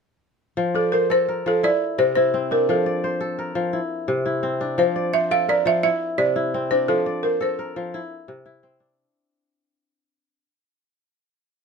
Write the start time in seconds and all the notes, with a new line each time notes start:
0.57 F3
0.75 A4 D5
0.92 A#4 C5
1.10 A4 C5
1.28 A#4
1.46 F3 A4
1.63 E4 D5
1.98 C3 C5
2.15 E4 C5
2.34 C4
2.51 D4 A#4
2.69 F3 A4
2.86 D5
3.04 C5
3.21 A4
3.39 A#4
3.55 F3
3.73 E4
4.08 C3
4.26 E4
4.43 C4
4.61 D4
4.78 F3 C5
4.96 D5
5.13 C5 E5
5.31 A4 F5
5.48 A#4 D5
5.66 F3 E5
5.83 E4 E5
6.18 C3 D5
6.36 E4
6.54 C4
6.71 D4 C5
6.88 F3 A4
7.06 D5
7.23 A#4 C5
7.41 A4 C5
7.59 A#4
7.76 F3
7.94 E4
8.28 C3
8.46 E4
8.63 C4
8.80 D4